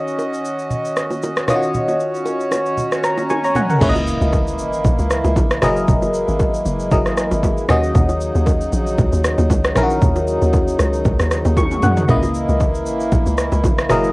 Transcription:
Already playing: fm electric piano D#3 C#4 F#4 D#5, harmonium C#4 F#4 D#5, swell
0.08 shaker
0.19 high bongo, shaker
0.33 shaker
0.45 shaker
0.59 shaker
0.70 low conga, shaker
0.85 shaker
0.97 cross-stick, shaker
1.11 low bongo, shaker
1.23 high bongo, low bongo, shaker
1.37 cross-stick, shaker
1.48 fm electric piano D#3 C#4 F4 D#5, harmonium C#5, cross-stick, high bongo, low conga, shaker
1.56 fm electric piano F#4
1.63 shaker
1.74 low conga, shaker
1.88 low bongo, shaker
2.00 shaker
2.14 shaker
2.26 high bongo, shaker
2.40 shaker
2.51 cross-stick, high bongo, low bongo, shaker
2.66 shaker
2.77 low conga, shaker
2.92 cross-stick, shaker
3.04 fm electric piano A#5, cross-stick, shaker
3.18 low bongo, shaker
3.30 fm electric piano G#5 C#6, high tom, high bongo, low bongo, shaker
3.44 fm electric piano C#5 A#5, shaker
3.55 fm electric piano F#5 G#5, mid tom, high bongo, low conga, shaker
3.70 fm electric piano A#4 F#5, floor tom, shaker
3.81 log drum bass C#2, fm electric piano C#3 A#3 E4 C#5, harmonium E3 A#3 E4, kick, crash, impact, low conga, shaker
3.89 fm electric piano D#5
3.95 low bongo, shaker
4.07 shaker
4.21 log drum bass C#2, shaker
4.33 kick, high bongo, shaker
4.47 shaker
4.59 log drum bass G#1, shaker
4.73 shaker
4.84 log drum bass A#1, kick, low conga, shaker
4.99 log drum bass C#2, shaker
5.11 cross-stick, shaker
5.24 log drum bass C#2, low bongo, shaker
5.36 log drum bass A#1, kick, high bongo, low bongo, shaker
5.51 cross-stick, shaker
5.62 log drum bass F#1, fm electric piano F#3 E4 G#4 A#4 D#5, harmonium G#3, cross-stick, low conga, shaker
5.77 shaker
5.88 log drum bass F#1, kick, low conga, shaker
6.02 low bongo, shaker
6.14 shaker
6.28 log drum bass G#1, shaker
6.39 kick, high bongo, shaker
6.54 shaker
6.66 log drum bass F#1, shaker
6.80 shaker
6.91 log drum bass F#1, fm electric piano F#3 E4 G#4 A#4 D#5, kick, low conga, shaker
7.06 log drum bass G#1, cross-stick, shaker
7.17 cross-stick, shaker
7.31 log drum bass G#1, low bongo, shaker
7.43 kick, high bongo, low bongo, shaker
7.57 shaker
7.68 log drum bass D#2, harmonium C#3 F#3 D#4, fm electric piano D#3 C#4 F#4 D#5, cross-stick, low conga, shaker
7.83 shaker
7.95 log drum bass D#2, kick, low conga, shaker
8.09 low bongo, shaker
8.21 shaker
8.35 log drum bass D#2, shaker
8.46 kick, high bongo, shaker
8.61 shaker
8.72 log drum bass A#1, shaker
8.87 shaker
8.98 log drum bass C#2, kick, low conga, shaker
9.12 log drum bass D#2, shaker
9.24 cross-stick, shaker
9.38 log drum bass D#2, low bongo, shaker
9.50 log drum bass C#2, kick, high bongo, low bongo, shaker
9.64 cross-stick, shaker
9.75 log drum bass A#1, fm electric piano D#3 C#4 E4 A#4, cross-stick, low conga, shaker
9.83 fm electric piano F#4
9.90 shaker
10.02 log drum bass D#2, kick, low conga, shaker
10.16 low bongo, shaker
10.27 shaker
10.42 log drum bass D#2, shaker
10.53 kick, high bongo, shaker
10.68 shaker
10.79 log drum bass C#2, cross-stick, high bongo, shaker
10.93 shaker
11.05 log drum bass C#2, kick, low conga, shaker
11.19 log drum bass D#2, cross-stick, shaker
11.31 cross-stick, shaker
11.45 log drum bass D#2, low bongo, shaker
11.57 fm electric piano C#6, kick, high tom, high bongo, low bongo, shaker
11.71 mid tom, shaker
11.82 log drum bass F#2, fm electric piano F#5, mid tom, high bongo, low conga, shaker
11.97 floor tom, shaker
12.08 log drum bass C#2, fm electric piano C#3 A#3 E4 D#5, harmonium E3 A#3 E4, kick, low conga, shaker
12.23 low bongo, shaker
12.34 shaker
12.49 log drum bass C#2, shaker
12.60 kick, high bongo, shaker
12.75 shaker
12.86 log drum bass G#1, shaker
13.00 shaker
13.12 log drum bass A#1, kick, low conga, shaker
13.26 log drum bass C#2, shaker
13.38 cross-stick, shaker
13.52 log drum bass C#2, low bongo, shaker
13.64 log drum bass A#1, kick, high bongo, low bongo, shaker
13.78 cross-stick, shaker
13.89 log drum bass F#1, fm electric piano F#3 E4 G#4 A#4 D#5, harmonium G#3 E4, cross-stick, low conga, shaker
14.04 shaker

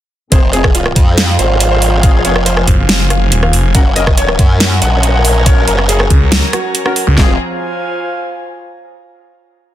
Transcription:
0.32 wobble bass F1, string section F3 C4 G#4, brass ensemble C4 F4 G#4, analog synth pad F4 C5, grand piano C5, kick, closed hi-hat
0.53 brass ensemble C4 F4 G#4, grand piano G#4, closed hi-hat
0.60 analog synth pad F5, kick, cross-stick
0.75 grand piano F4, closed hi-hat
0.79 analog synth pad G#5
0.86 cross-stick
0.96 wobble bass F2, kick, closed hi-hat
1.18 snare, closed hi-hat
1.39 wobble bass G#1, grand piano C5, closed hi-hat
1.60 closed hi-hat
1.71 grand piano C5
1.82 open hi-hat
2.03 brass ensemble C4 F4 G#4, grand piano F5, kick, closed hi-hat
2.25 wobble bass F1, brass ensemble C4 F4 G#4, grand piano C#5, closed hi-hat
2.36 cross-stick
2.46 grand piano C5, closed hi-hat
2.57 cross-stick
2.68 detuned saw bass F#1, kick, closed hi-hat
2.89 snare, closed hi-hat
3.10 grand piano F5, cross-stick, closed hi-hat
3.32 detuned saw bass D#1, closed hi-hat
3.43 grand piano F5, cross-stick
3.53 detuned saw bass F1, open hi-hat
3.75 wobble bass F#1, string section F#3 C#4 A#4, brass ensemble C#4 F#4 A#4, analog synth pad F#4, grand piano F#5, kick, closed hi-hat
3.88 analog synth pad C#5
3.96 brass ensemble C#4 F#4 A#4, grand piano D#5, closed hi-hat
4.01 analog synth pad A#5
4.07 kick, cross-stick
4.17 grand piano C#5, closed hi-hat
4.29 cross-stick
4.39 wobble bass F#2, kick, closed hi-hat
4.60 snare, closed hi-hat
4.82 wobble bass A#1, grand piano F#5, closed hi-hat
5.03 closed hi-hat
5.14 grand piano F#5
5.25 open hi-hat
5.46 brass ensemble C#4 F#4 A#4, grand piano C#5, kick, closed hi-hat
5.68 wobble bass F#1, grand piano A#4, closed hi-hat
5.79 cross-stick
5.89 grand piano G#4, closed hi-hat
6.00 cross-stick
6.10 detuned saw bass C#2, kick, closed hi-hat
6.32 snare, closed hi-hat
6.53 grand piano F#4, cross-stick, closed hi-hat
6.75 closed hi-hat
6.86 brass ensemble C#4 F#4 A#4, grand piano F#4, cross-stick
6.96 open hi-hat
7.07 detuned saw bass C#2
7.18 wobble bass F1, string section F3 C4 G#4, brass ensemble C4 F4 G#4, grand piano F4, analog synth pad F4, kick, snare
7.24 analog synth pad C5
7.31 analog synth pad F5
7.37 analog synth pad G#5

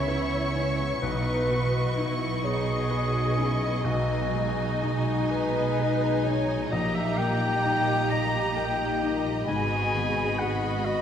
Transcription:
Already playing: felt piano C#2 B3 E4 C#5, double bass section C#2, cello section C#3, harp C#3 G#3 G#4, french horn section E3 B3, violin section B3 E5 C#6, viola section E4, clarinet C#5, flute section C#5
0.08 harp E4, felt piano B4
0.55 harp G#3, felt piano C#4
1.02 double bass section B1, felt piano B1, harp B2, cello section B2, violin section B3 D#5, viola section D#4, flute section B4, clarinet B4
1.48 harp F#3, felt piano B3, viola section F#4
1.96 felt piano D#4, harp D#4, viola section E4
2.43 viola section D#4, flute section G#4, clarinet G#4, felt piano C#5, harp C#5, french horn section D#5
2.90 harp D#4, viola section F#4, felt piano B4
3.37 harp F#3, felt piano C#4, viola section E4
3.84 felt piano B1, harp B2, french horn section G#3, viola section D#4, violin section D#4 G#5, clarinet F#4, flute section F#4
4.34 harp F#3, felt piano G#3
4.82 felt piano D#4, harp D#4
5.31 flute section B4, clarinet B4, felt piano D#5, harp D#5
5.79 harp D#4, felt piano G#4
6.25 harp F#3, felt piano D#4, clarinet C#5, flute section C#5
6.71 felt piano A#1, double bass section A#1, harp A#2, cello section A#2, french horn section A#3 D#4, viola section G4, clarinet D#5, flute section D#5, violin section D#5 A#5
6.95 clarinet E5, flute section E5
7.18 harp G3, felt piano A#3, clarinet G5, flute section G5
7.64 harp D#4, felt piano D#4
8.10 harp D#5, felt piano D#5, clarinet A#5, flute section A#5
8.56 harp D#4, felt piano A#4, clarinet G5, flute section G5
9.02 harp G3, felt piano D#4
9.47 double bass section G#1, cello section G#2, harp G#2, felt piano G#2, french horn section B3 F#4, violin section F#4 B5, viola section G#4, clarinet G#5, flute section G#5
9.93 harp D#3, felt piano B3
10.39 harp F#4, felt piano F#4, clarinet F#5, flute section F#5
10.85 viola section F#4, flute section D#5, harp D#5, clarinet D#5, felt piano D#5

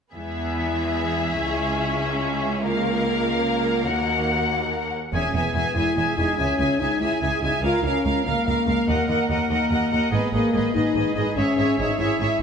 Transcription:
0.14 cello section E2, french horn section G#3 E4, viola section B3, violin section G#4 E5
1.39 cello section C#2, viola section C#4
2.63 viola section A#3, french horn section A#3 F4, violin section A#4 F5
3.87 cello section D#2, french horn section F#4, violin section F#5
5.13 double bass section E1, cello section E2, french horn section C#4, viola section G#4, violin section E5 G#5
5.34 double bass section E1, cello section E2, french horn section B3, viola section G#4, violin section E5 G#5
5.55 double bass section E1, cello section E2, viola section G#4, violin section E5 G#5
5.76 double bass section E1, cello section E2, french horn section E4, viola section G#4, violin section E5 G#5
5.97 double bass section E1, cello section E2, viola section G#4, violin section E5 G#5
6.17 double bass section E1, cello section E2, french horn section D#4, viola section G#4, violin section E5 G#5
6.37 double bass section C#2, cello section C#2, french horn section C#4, viola section G#4, violin section E5 G#5
6.58 double bass section C#2, cello section C#2, viola section G#4, violin section E5 G#5
6.79 double bass section C#2, cello section C#2, french horn section D#4, viola section G#4, violin section E5 G#5
7.00 double bass section C#2, cello section C#2, french horn section E4, viola section G#4, violin section E5 G#5
7.22 double bass section C#2, cello section C#2, viola section G#4, violin section E5 G#5
7.42 double bass section C#2, cello section C#2, french horn section D#4, viola section G#4, violin section E5 G#5
7.63 double bass section C#2, cello section C#2, french horn section F4, viola section A#4, violin section F5
7.83 double bass section C#2, cello section C#2, french horn section C#4, viola section A#4, violin section F5
8.05 double bass section C#2, cello section C#2, viola section A#4, violin section F5
8.25 double bass section C#2, cello section C#2, french horn section A#3, viola section A#4, violin section F5
8.46 double bass section C#2, cello section C#2, viola section A#4, violin section F5
8.66 cello section C#2, double bass section C#2, viola section A#4, violin section F5
8.88 double bass section D#2, cello section D#2, viola section A#4, violin section D#5 F#5
9.08 cello section D#2, double bass section D#2, viola section A#4, violin section D#5 F#5
9.29 cello section D#2, double bass section D#2, viola section A#4, violin section D#5 F#5
9.50 double bass section D#2, cello section D#2, viola section A#4, violin section D#5 F#5
9.70 double bass section D#2, cello section D#2, viola section A#4, violin section D#5 F#5
9.91 double bass section D#2, cello section D#2, viola section A#4, violin section D#5 F#5
10.12 double bass section G#1, cello section G#2, french horn section B3, viola section G#4, violin section B4 D#5
10.32 double bass section G#1, cello section G#2, french horn section A#3, viola section G#4, violin section B4 D#5
10.54 double bass section G#1, cello section G#2, viola section G#4, violin section B4 D#5
10.74 double bass section G#1, cello section G#2, french horn section D#4, viola section G#4, violin section B4 D#5
10.95 double bass section G#1, cello section G#2, viola section G#4, violin section B4 D#5
11.15 double bass section G#1, cello section G#2, french horn section D#4, viola section G#4, violin section B4 D#5
11.36 double bass section G#1, cello section G#2, french horn section C#4, viola section G#4, violin section C#5 E5
11.57 double bass section G#1, cello section G#2, viola section G#4, violin section C#5 E5
11.78 double bass section G#1, cello section G#2, french horn section D#4, viola section G#4, violin section C#5 E5
11.99 double bass section G#1, cello section G#2, french horn section E4, viola section G#4, violin section C#5 E5
12.20 double bass section G#1, cello section G#2, viola section G#4, violin section C#5 E5

